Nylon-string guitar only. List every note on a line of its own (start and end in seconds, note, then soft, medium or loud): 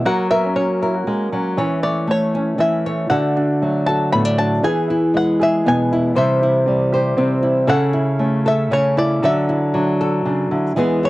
0.05 1.07 F#3 medium
0.05 0.30 A#4 medium
0.31 0.81 A#4 medium
0.56 1.54 C#4 medium
0.83 1.55 A#4 medium
1.07 1.32 G#3 medium
1.33 1.58 F#3 medium
1.57 2.57 E3 medium
1.57 1.82 C#5 medium
1.83 2.85 C#5 medium
2.07 3.07 A3 medium
2.35 2.57 C#4 medium
2.58 3.07 E3 medium
2.58 3.07 C#4 medium
2.86 3.08 C#5 medium
3.10 4.60 D3 medium
3.10 3.87 A4 medium
3.37 4.38 F#4 soft
3.62 4.64 F#3 medium
3.89 4.61 A4 medium
4.13 4.60 A2 medium
4.13 4.25 B3 medium
4.25 4.63 D4 medium
4.39 4.61 F#4 medium
4.64 7.67 E3 medium
4.64 5.40 G#4 medium
4.90 5.92 E4 soft
5.14 6.13 G#3 soft
5.41 6.16 G#4 medium
5.66 6.13 B2 medium
5.66 6.17 B3 medium
5.93 6.43 E4 medium
6.16 7.17 C3 medium
6.16 6.93 C5 medium
6.43 7.42 E4 medium
6.68 7.66 G3 medium
6.94 7.67 C5 medium
7.18 7.66 C3 medium
7.18 7.66 C4 medium
7.43 7.93 E4 medium
7.67 8.70 C#3 medium
7.67 8.45 A4 medium
7.93 8.97 E4 medium
8.19 9.19 A3 medium
8.46 9.19 A4 medium
8.71 9.22 C#3 medium
8.71 9.19 C#4 medium
8.97 9.26 E4 medium
9.23 10.25 D3 medium
9.23 9.99 A4 medium
9.49 10.74 E4 medium
9.74 10.76 F#3 medium
10.01 10.74 A4 medium
10.25 10.51 C#3 medium
10.51 10.76 D3 medium
10.76 11.10 E3 medium
10.76 11.10 G#3 medium
10.76 11.10 B3 medium
10.76 11.02 E4 medium
10.76 11.10 G#4 medium
11.03 11.10 E4 soft